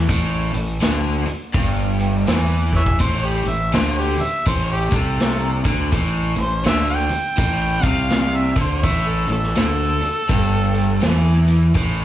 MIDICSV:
0, 0, Header, 1, 7, 480
1, 0, Start_track
1, 0, Tempo, 728155
1, 61, Time_signature, 4, 2, 24, 8
1, 7942, End_track
2, 0, Start_track
2, 0, Title_t, "Harmonica"
2, 0, Program_c, 0, 22
2, 1818, Note_on_c, 0, 71, 68
2, 1818, Note_on_c, 0, 73, 68
2, 1818, Note_on_c, 0, 76, 97
2, 1859, Note_off_c, 0, 71, 0
2, 1862, Note_off_c, 0, 73, 0
2, 1976, Note_off_c, 0, 76, 0
2, 1979, Note_on_c, 0, 72, 90
2, 2145, Note_on_c, 0, 67, 86
2, 2155, Note_off_c, 0, 72, 0
2, 2306, Note_on_c, 0, 76, 101
2, 2316, Note_off_c, 0, 67, 0
2, 2460, Note_off_c, 0, 76, 0
2, 2469, Note_on_c, 0, 72, 75
2, 2629, Note_on_c, 0, 67, 84
2, 2638, Note_off_c, 0, 72, 0
2, 2793, Note_on_c, 0, 76, 91
2, 2803, Note_off_c, 0, 67, 0
2, 2944, Note_off_c, 0, 76, 0
2, 2951, Note_on_c, 0, 72, 91
2, 3103, Note_off_c, 0, 72, 0
2, 3111, Note_on_c, 0, 67, 85
2, 3273, Note_on_c, 0, 69, 97
2, 3283, Note_off_c, 0, 67, 0
2, 3735, Note_off_c, 0, 69, 0
2, 4232, Note_on_c, 0, 72, 94
2, 4384, Note_off_c, 0, 72, 0
2, 4391, Note_on_c, 0, 76, 93
2, 4544, Note_off_c, 0, 76, 0
2, 4548, Note_on_c, 0, 79, 105
2, 5168, Note_off_c, 0, 79, 0
2, 5168, Note_on_c, 0, 77, 105
2, 5509, Note_on_c, 0, 76, 79
2, 5519, Note_off_c, 0, 77, 0
2, 5663, Note_off_c, 0, 76, 0
2, 5674, Note_on_c, 0, 72, 86
2, 5833, Note_on_c, 0, 76, 94
2, 5843, Note_off_c, 0, 72, 0
2, 5990, Note_on_c, 0, 69, 88
2, 6000, Note_off_c, 0, 76, 0
2, 6143, Note_off_c, 0, 69, 0
2, 6146, Note_on_c, 0, 69, 121
2, 7559, Note_off_c, 0, 69, 0
2, 7942, End_track
3, 0, Start_track
3, 0, Title_t, "Overdriven electric guitar"
3, 0, Program_c, 1, 29
3, 60, Note_on_c, 1, 45, 99
3, 347, Note_off_c, 1, 45, 0
3, 354, Note_on_c, 1, 45, 69
3, 503, Note_off_c, 1, 45, 0
3, 538, Note_on_c, 1, 50, 98
3, 830, Note_off_c, 1, 50, 0
3, 1013, Note_on_c, 1, 43, 95
3, 1493, Note_off_c, 1, 43, 0
3, 1495, Note_on_c, 1, 52, 98
3, 1971, Note_off_c, 1, 52, 0
3, 1974, Note_on_c, 1, 45, 99
3, 2268, Note_off_c, 1, 45, 0
3, 2278, Note_on_c, 1, 45, 67
3, 2425, Note_off_c, 1, 45, 0
3, 2460, Note_on_c, 1, 50, 103
3, 2752, Note_off_c, 1, 50, 0
3, 2945, Note_on_c, 1, 45, 95
3, 3235, Note_off_c, 1, 45, 0
3, 3239, Note_on_c, 1, 48, 91
3, 3712, Note_off_c, 1, 48, 0
3, 3722, Note_on_c, 1, 50, 86
3, 3899, Note_off_c, 1, 50, 0
3, 3905, Note_on_c, 1, 45, 101
3, 4189, Note_off_c, 1, 45, 0
3, 4197, Note_on_c, 1, 45, 63
3, 4346, Note_off_c, 1, 45, 0
3, 4382, Note_on_c, 1, 50, 100
3, 4674, Note_off_c, 1, 50, 0
3, 4861, Note_on_c, 1, 45, 99
3, 5153, Note_off_c, 1, 45, 0
3, 5163, Note_on_c, 1, 48, 94
3, 5635, Note_off_c, 1, 48, 0
3, 5644, Note_on_c, 1, 50, 92
3, 5820, Note_off_c, 1, 50, 0
3, 5826, Note_on_c, 1, 45, 104
3, 6116, Note_off_c, 1, 45, 0
3, 6126, Note_on_c, 1, 45, 67
3, 6270, Note_off_c, 1, 45, 0
3, 6303, Note_on_c, 1, 50, 97
3, 6594, Note_off_c, 1, 50, 0
3, 6782, Note_on_c, 1, 43, 96
3, 7258, Note_off_c, 1, 43, 0
3, 7261, Note_on_c, 1, 52, 104
3, 7737, Note_off_c, 1, 52, 0
3, 7744, Note_on_c, 1, 45, 100
3, 7942, Note_off_c, 1, 45, 0
3, 7942, End_track
4, 0, Start_track
4, 0, Title_t, "Fingered electric bass"
4, 0, Program_c, 2, 33
4, 60, Note_on_c, 2, 33, 93
4, 338, Note_off_c, 2, 33, 0
4, 362, Note_on_c, 2, 33, 71
4, 530, Note_off_c, 2, 33, 0
4, 539, Note_on_c, 2, 38, 93
4, 818, Note_off_c, 2, 38, 0
4, 1017, Note_on_c, 2, 31, 81
4, 1474, Note_off_c, 2, 31, 0
4, 1505, Note_on_c, 2, 40, 88
4, 1958, Note_off_c, 2, 40, 0
4, 1979, Note_on_c, 2, 33, 89
4, 2259, Note_off_c, 2, 33, 0
4, 2281, Note_on_c, 2, 33, 76
4, 2450, Note_off_c, 2, 33, 0
4, 2461, Note_on_c, 2, 38, 87
4, 2740, Note_off_c, 2, 38, 0
4, 2943, Note_on_c, 2, 33, 89
4, 3221, Note_off_c, 2, 33, 0
4, 3243, Note_on_c, 2, 36, 90
4, 3697, Note_off_c, 2, 36, 0
4, 3725, Note_on_c, 2, 38, 88
4, 3893, Note_off_c, 2, 38, 0
4, 3906, Note_on_c, 2, 33, 93
4, 4183, Note_off_c, 2, 33, 0
4, 4206, Note_on_c, 2, 33, 81
4, 4373, Note_off_c, 2, 33, 0
4, 4388, Note_on_c, 2, 38, 85
4, 4665, Note_off_c, 2, 38, 0
4, 4867, Note_on_c, 2, 33, 89
4, 5144, Note_off_c, 2, 33, 0
4, 5163, Note_on_c, 2, 36, 90
4, 5617, Note_off_c, 2, 36, 0
4, 5644, Note_on_c, 2, 38, 89
4, 5813, Note_off_c, 2, 38, 0
4, 5824, Note_on_c, 2, 33, 90
4, 6103, Note_off_c, 2, 33, 0
4, 6128, Note_on_c, 2, 33, 76
4, 6295, Note_off_c, 2, 33, 0
4, 6305, Note_on_c, 2, 38, 93
4, 6583, Note_off_c, 2, 38, 0
4, 6787, Note_on_c, 2, 31, 88
4, 7240, Note_off_c, 2, 31, 0
4, 7267, Note_on_c, 2, 40, 83
4, 7720, Note_off_c, 2, 40, 0
4, 7746, Note_on_c, 2, 33, 89
4, 7942, Note_off_c, 2, 33, 0
4, 7942, End_track
5, 0, Start_track
5, 0, Title_t, "Muted fingered electric bass strokes"
5, 838, Note_on_c, 9, 29, 35
5, 904, Note_off_c, 9, 29, 0
5, 2765, Note_on_c, 9, 29, 38
5, 2831, Note_off_c, 9, 29, 0
5, 4686, Note_on_c, 9, 29, 37
5, 4752, Note_off_c, 9, 29, 0
5, 6607, Note_on_c, 9, 29, 34
5, 6673, Note_off_c, 9, 29, 0
5, 7942, End_track
6, 0, Start_track
6, 0, Title_t, "Muted overdriven electric guitar strokes"
6, 835, Note_on_c, 9, 29, 56
6, 901, Note_off_c, 9, 29, 0
6, 2762, Note_on_c, 9, 29, 54
6, 2828, Note_off_c, 9, 29, 0
6, 4679, Note_on_c, 9, 29, 55
6, 4745, Note_off_c, 9, 29, 0
6, 6606, Note_on_c, 9, 29, 55
6, 6672, Note_off_c, 9, 29, 0
6, 7942, End_track
7, 0, Start_track
7, 0, Title_t, "Drums"
7, 60, Note_on_c, 9, 36, 106
7, 60, Note_on_c, 9, 46, 66
7, 126, Note_off_c, 9, 36, 0
7, 126, Note_off_c, 9, 46, 0
7, 355, Note_on_c, 9, 46, 55
7, 421, Note_off_c, 9, 46, 0
7, 537, Note_on_c, 9, 46, 66
7, 543, Note_on_c, 9, 38, 108
7, 603, Note_off_c, 9, 46, 0
7, 609, Note_off_c, 9, 38, 0
7, 836, Note_on_c, 9, 46, 53
7, 902, Note_off_c, 9, 46, 0
7, 1016, Note_on_c, 9, 46, 66
7, 1018, Note_on_c, 9, 36, 99
7, 1082, Note_off_c, 9, 46, 0
7, 1084, Note_off_c, 9, 36, 0
7, 1314, Note_on_c, 9, 46, 50
7, 1380, Note_off_c, 9, 46, 0
7, 1497, Note_on_c, 9, 46, 67
7, 1503, Note_on_c, 9, 38, 112
7, 1563, Note_off_c, 9, 46, 0
7, 1569, Note_off_c, 9, 38, 0
7, 1797, Note_on_c, 9, 36, 55
7, 1863, Note_off_c, 9, 36, 0
7, 1887, Note_on_c, 9, 36, 76
7, 1953, Note_off_c, 9, 36, 0
7, 1977, Note_on_c, 9, 46, 62
7, 1978, Note_on_c, 9, 36, 99
7, 2043, Note_off_c, 9, 46, 0
7, 2044, Note_off_c, 9, 36, 0
7, 2279, Note_on_c, 9, 46, 49
7, 2345, Note_off_c, 9, 46, 0
7, 2457, Note_on_c, 9, 46, 63
7, 2462, Note_on_c, 9, 38, 109
7, 2523, Note_off_c, 9, 46, 0
7, 2528, Note_off_c, 9, 38, 0
7, 2763, Note_on_c, 9, 46, 50
7, 2829, Note_off_c, 9, 46, 0
7, 2944, Note_on_c, 9, 36, 98
7, 2947, Note_on_c, 9, 46, 61
7, 3010, Note_off_c, 9, 36, 0
7, 3013, Note_off_c, 9, 46, 0
7, 3244, Note_on_c, 9, 36, 99
7, 3248, Note_on_c, 9, 46, 49
7, 3310, Note_off_c, 9, 36, 0
7, 3314, Note_off_c, 9, 46, 0
7, 3428, Note_on_c, 9, 46, 67
7, 3433, Note_on_c, 9, 38, 105
7, 3494, Note_off_c, 9, 46, 0
7, 3499, Note_off_c, 9, 38, 0
7, 3725, Note_on_c, 9, 36, 93
7, 3728, Note_on_c, 9, 46, 47
7, 3791, Note_off_c, 9, 36, 0
7, 3794, Note_off_c, 9, 46, 0
7, 3906, Note_on_c, 9, 36, 97
7, 3908, Note_on_c, 9, 46, 71
7, 3972, Note_off_c, 9, 36, 0
7, 3974, Note_off_c, 9, 46, 0
7, 4206, Note_on_c, 9, 46, 53
7, 4272, Note_off_c, 9, 46, 0
7, 4385, Note_on_c, 9, 46, 68
7, 4390, Note_on_c, 9, 38, 107
7, 4451, Note_off_c, 9, 46, 0
7, 4456, Note_off_c, 9, 38, 0
7, 4685, Note_on_c, 9, 46, 55
7, 4751, Note_off_c, 9, 46, 0
7, 4866, Note_on_c, 9, 36, 97
7, 4868, Note_on_c, 9, 46, 69
7, 4932, Note_off_c, 9, 36, 0
7, 4934, Note_off_c, 9, 46, 0
7, 5164, Note_on_c, 9, 36, 98
7, 5165, Note_on_c, 9, 46, 48
7, 5230, Note_off_c, 9, 36, 0
7, 5231, Note_off_c, 9, 46, 0
7, 5341, Note_on_c, 9, 46, 69
7, 5346, Note_on_c, 9, 38, 110
7, 5407, Note_off_c, 9, 46, 0
7, 5412, Note_off_c, 9, 38, 0
7, 5642, Note_on_c, 9, 46, 49
7, 5644, Note_on_c, 9, 36, 101
7, 5708, Note_off_c, 9, 46, 0
7, 5710, Note_off_c, 9, 36, 0
7, 5821, Note_on_c, 9, 46, 68
7, 5824, Note_on_c, 9, 36, 101
7, 5887, Note_off_c, 9, 46, 0
7, 5890, Note_off_c, 9, 36, 0
7, 6117, Note_on_c, 9, 46, 53
7, 6183, Note_off_c, 9, 46, 0
7, 6214, Note_on_c, 9, 38, 29
7, 6280, Note_off_c, 9, 38, 0
7, 6300, Note_on_c, 9, 46, 58
7, 6305, Note_on_c, 9, 38, 104
7, 6366, Note_off_c, 9, 46, 0
7, 6371, Note_off_c, 9, 38, 0
7, 6604, Note_on_c, 9, 46, 48
7, 6670, Note_off_c, 9, 46, 0
7, 6781, Note_on_c, 9, 46, 62
7, 6785, Note_on_c, 9, 36, 96
7, 6847, Note_off_c, 9, 46, 0
7, 6851, Note_off_c, 9, 36, 0
7, 7081, Note_on_c, 9, 46, 45
7, 7147, Note_off_c, 9, 46, 0
7, 7262, Note_on_c, 9, 46, 63
7, 7268, Note_on_c, 9, 38, 114
7, 7328, Note_off_c, 9, 46, 0
7, 7334, Note_off_c, 9, 38, 0
7, 7565, Note_on_c, 9, 46, 45
7, 7631, Note_off_c, 9, 46, 0
7, 7746, Note_on_c, 9, 46, 63
7, 7747, Note_on_c, 9, 36, 97
7, 7811, Note_off_c, 9, 46, 0
7, 7812, Note_off_c, 9, 36, 0
7, 7942, End_track
0, 0, End_of_file